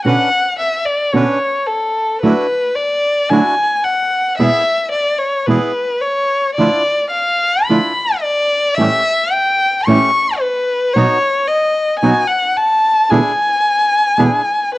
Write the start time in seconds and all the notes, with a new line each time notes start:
0.05 B2 D3 B3 C#4 D4 F#4 B4 F#5
0.59 E5
0.85 D5
1.13 B2 D3 B3 C#4 D4 F#4 B4 C#5
1.66 A4
2.22 D3 F#3 A3 D4 E4 F#4 B4
2.76 D5
3.29 D3 F#3 A3 D4 E4 F#4 G#5
3.84 F#5
4.38 E2 B2 E3 G#3 B3 E4 G#4 E5
4.92 D5
5.19 C#5
5.46 E2 B2 E3 G#3 B3 E4 G#4 B4
6.01 C#5
6.55 D3 F3 A3 D4 D5
6.59 E4 F4
7.11 F5
7.65 D3 F3 D4 B5
7.70 A3 D4 E4 F4
8.20 D5
8.75 A2 E3 G3 C#4 E5
8.79 A3 C#4 E4 G4
9.31 G5
9.85 A2 E3 G3 A3 C#4 E4 C#6
9.89 G4
10.40 B4
10.94 B2 F#3 B3 D#4 F#4 C#5
11.48 D#5
12.00 B2 F#3 B3 D#4 F#4 G#5
12.04 D#4
12.28 F#5
12.57 A5
13.10 E2 B2 D3 G#3 B3 D4 E4 G#4 G#5
14.18 E2 B2 D3 G#3 B3 D4 E4 G#4
14.75 B4